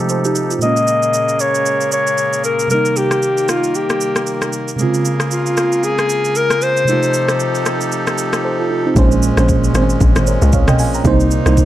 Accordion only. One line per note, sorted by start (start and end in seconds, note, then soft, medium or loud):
0.00 0.59 C3 medium
0.00 0.59 F3 medium
0.00 0.59 D#4 medium
0.00 0.59 G4 medium
0.00 0.59 A4 medium
0.61 2.68 C#3 medium
0.61 6.84 A#3 medium
0.61 2.68 G#4 medium
0.61 6.84 A#4 medium
2.70 4.77 D#3 medium
4.79 6.85 C#3 medium
4.79 6.85 G#4 medium
6.87 8.94 C3 medium
6.87 8.94 F3 medium
6.87 8.94 D#4 medium
6.87 8.94 G4 medium
6.87 8.94 A4 medium
8.96 11.65 A#2 medium
8.96 11.03 G#3 medium
8.96 11.03 C#4 medium
11.05 11.65 A#3 medium
11.05 11.65 D#4 medium